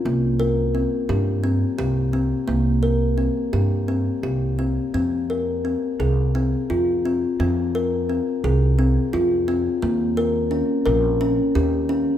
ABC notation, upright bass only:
X:1
M:7/8
L:1/8
Q:1/4=86
K:Cphr
V:1 name="Upright bass" clef=bass
C,,3 G,,2 C,,2 | C,,3 G,,2 C,,2 | F,,3 C,,2 F,,2 | F,,3 C,,2 F,,2 |
E,,3 B,,,2 E,,2 |]